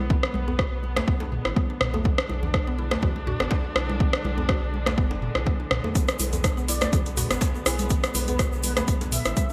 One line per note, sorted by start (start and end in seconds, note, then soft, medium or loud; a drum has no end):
0.00 0.17 B1 medium
0.00 9.53 D3 medium
0.00 9.53 G#3 medium
0.00 2.04 B3 medium
0.10 0.17 B3 medium
0.10 kick loud
0.10 high conga medium
0.10 low conga loud
0.23 cross-stick medium
0.34 0.66 B1 loud
0.34 muted conga medium
0.34 high conga loud
0.48 0.58 B3 medium
0.48 djembe tone medium
0.59 0.71 F#4 loud
0.59 kick loud
0.59 cross-stick medium
0.72 1.02 B1 medium
0.83 muted conga soft
0.83 high conga medium
0.96 1.07 A3 medium
0.96 cross-stick medium
0.96 djembe slap loud
1.08 1.39 B1 medium
1.08 1.20 B3 loud
1.08 kick loud
1.20 1.27 D4 medium
1.20 djembe slap medium
1.20 muted conga medium
1.32 mid tom medium
1.45 1.53 G#1 medium
1.45 1.55 E4 medium
1.45 cross-stick medium
1.56 1.64 B3 medium
1.56 kick loud
1.56 muted conga soft
1.56 high conga loud
1.70 1.76 D4 medium
1.81 2.12 B1 medium
1.81 cross-stick loud
1.81 mid tom medium
1.94 2.04 A3 medium
1.94 muted conga medium
1.94 djembe tone loud
2.04 2.18 B3 medium
2.04 5.94 D4 medium
2.04 kick loud
2.04 high conga medium
2.04 low conga medium
2.18 cross-stick loud
2.29 2.61 B1 medium
2.29 muted conga soft
2.29 high conga loud
2.43 djembe tone medium
2.43 low conga medium
2.54 2.67 D4 medium
2.54 kick loud
2.54 cross-stick medium
2.67 2.97 B1 medium
2.67 2.78 B3 loud
2.78 2.90 E4 medium
2.78 muted conga soft
2.78 high conga medium
2.91 3.02 A3 loud
2.91 cross-stick medium
2.91 djembe slap loud
3.02 3.34 B1 medium
3.02 3.15 F#4 medium
3.02 kick loud
3.02 djembe tone medium
3.02 low conga medium
3.16 3.27 D4 medium
3.16 muted conga medium
3.27 3.40 F#4 loud
3.27 mid tom medium
3.27 djembe tone medium
3.40 3.48 G#1 medium
3.40 3.50 B3 medium
3.40 cross-stick medium
3.40 djembe slap medium
3.51 kick loud
3.51 djembe slap loud
3.51 muted conga soft
3.76 4.07 B1 medium
3.76 3.88 E4 medium
3.76 cross-stick loud
3.90 muted conga medium
3.90 high conga medium
4.00 4.07 B3 medium
4.00 kick loud
4.00 high conga medium
4.00 low conga medium
4.13 cross-stick loud
4.24 4.56 B1 loud
4.24 muted conga soft
4.24 high conga loud
4.38 4.48 B3 medium
4.38 djembe tone medium
4.49 4.61 F#4 loud
4.49 kick loud
4.49 cross-stick medium
4.62 4.99 B1 medium
4.74 muted conga soft
4.74 high conga medium
4.86 4.97 A3 medium
4.86 cross-stick medium
4.86 djembe slap loud
4.98 5.29 F#1 medium
4.98 5.10 B3 loud
4.98 kick loud
5.11 5.17 D4 medium
5.11 djembe slap medium
5.11 muted conga medium
5.22 mid tom medium
5.35 5.65 B1 medium
5.35 5.45 E4 medium
5.35 cross-stick medium
5.46 5.54 B3 medium
5.46 kick loud
5.46 muted conga soft
5.46 high conga loud
5.60 5.66 D4 medium
5.71 5.80 B1 medium
5.71 cross-stick loud
5.71 mid tom medium
5.84 5.94 A3 medium
5.84 muted conga medium
5.84 djembe tone loud
5.95 6.08 B3 medium
5.95 9.53 B3 medium
5.95 kick loud
5.95 closed hi-hat medium
5.95 high conga medium
5.95 low conga medium
5.95 shaker soft
6.08 cross-stick medium
6.08 closed hi-hat soft
6.08 shaker soft
6.19 6.51 B1 loud
6.19 open hi-hat medium
6.19 muted conga soft
6.19 high conga loud
6.19 shaker medium
6.33 closed hi-hat soft
6.33 djembe tone medium
6.33 low conga medium
6.33 shaker soft
6.44 6.57 D4 medium
6.44 kick loud
6.44 cross-stick medium
6.44 closed hi-hat medium
6.44 shaker medium
6.57 6.87 B1 medium
6.57 6.68 B3 loud
6.57 shaker soft
6.68 6.80 E4 medium
6.68 6.90 D5 loud
6.68 open hi-hat medium
6.68 muted conga soft
6.68 high conga medium
6.68 shaker medium
6.81 6.92 A3 loud
6.81 cross-stick medium
6.81 closed hi-hat soft
6.81 djembe slap loud
6.81 shaker soft
6.92 7.24 B1 medium
6.92 7.06 F#4 medium
6.92 kick loud
6.92 closed hi-hat medium
6.92 djembe tone medium
6.92 low conga medium
6.92 shaker medium
7.06 7.17 D4 medium
7.06 closed hi-hat soft
7.06 muted conga medium
7.06 shaker soft
7.17 7.30 F#4 loud
7.17 mid tom medium
7.17 open hi-hat medium
7.17 djembe tone medium
7.17 shaker medium
7.31 7.38 G#1 medium
7.31 7.41 B3 medium
7.31 cross-stick medium
7.31 closed hi-hat soft
7.31 djembe slap medium
7.31 shaker soft
7.41 kick loud
7.41 closed hi-hat medium
7.41 djembe slap loud
7.41 muted conga soft
7.41 shaker medium
7.55 shaker soft
7.66 7.97 B1 medium
7.66 7.78 E4 medium
7.66 7.88 G#4 loud
7.66 cross-stick medium
7.66 open hi-hat medium
7.66 shaker medium
7.79 closed hi-hat medium
7.79 muted conga medium
7.79 high conga medium
7.79 shaker soft
7.90 7.98 B3 medium
7.90 kick loud
7.90 closed hi-hat medium
7.90 high conga medium
7.90 low conga medium
7.90 shaker medium
8.04 cross-stick medium
8.04 closed hi-hat soft
8.04 shaker soft
8.15 8.46 B1 loud
8.15 8.23 B4 medium
8.15 open hi-hat medium
8.15 muted conga medium
8.15 high conga loud
8.15 shaker medium
8.28 8.39 B3 medium
8.28 8.35 B4 medium
8.28 closed hi-hat soft
8.28 djembe tone medium
8.28 shaker soft
8.39 8.51 F#4 loud
8.39 kick loud
8.39 cross-stick medium
8.39 closed hi-hat medium
8.39 shaker medium
8.52 8.82 B1 medium
8.52 shaker soft
8.63 8.72 B4 medium
8.63 open hi-hat medium
8.63 muted conga soft
8.63 high conga medium
8.63 shaker medium
8.77 8.87 A3 medium
8.77 8.84 B4 medium
8.77 cross-stick medium
8.77 closed hi-hat soft
8.77 djembe slap medium
8.77 shaker soft
8.88 9.19 B1 medium
8.88 9.00 B3 loud
8.88 kick loud
8.88 closed hi-hat medium
8.88 shaker soft
9.01 9.07 D4 medium
9.01 closed hi-hat soft
9.01 djembe slap medium
9.01 muted conga medium
9.01 shaker soft
9.12 9.53 E5 medium
9.12 mid tom medium
9.12 open hi-hat medium
9.12 shaker medium
9.24 9.33 G#1 medium
9.24 9.36 E4 medium
9.24 cross-stick medium
9.24 closed hi-hat soft
9.24 shaker soft
9.37 9.44 B3 medium
9.37 kick loud
9.37 closed hi-hat medium
9.37 muted conga soft
9.37 high conga loud
9.37 shaker medium
9.50 shaker soft